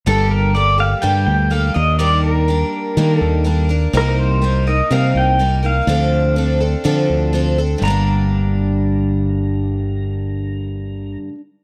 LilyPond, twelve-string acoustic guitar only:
\new Staff \with { instrumentName = "Twelve-string acoustic guitar" } { \time 4/4 \key g \minor \tempo 4 = 124 <g, d g bes g' a'>4 <g bes g' a'>8 <g bes g' a'>8 <g, d g bes g' a'>4 <g bes g' a'>8 <bes d' bes'>8 | <ees g bes d' bes'>4 <g bes d' bes'>4 <ees g bes d' bes'>4 <g bes d' bes'>8 <bes d' bes'>8 | <c g bes ees' bes'>4 <g bes ees' bes'>8 <bes ees' bes'>8 <c g bes ees' bes'>4 <g bes ees' bes'>8 <bes ees' bes'>8 | <d f c' d' a'>4 <f c' d' a'>8 <c' d' a'>8 <d f c' d' a'>4 <f c' d' a'>8 <c' d' a'>8 |
<g, d g bes d'>1~ | <g, d g bes d'>1 | }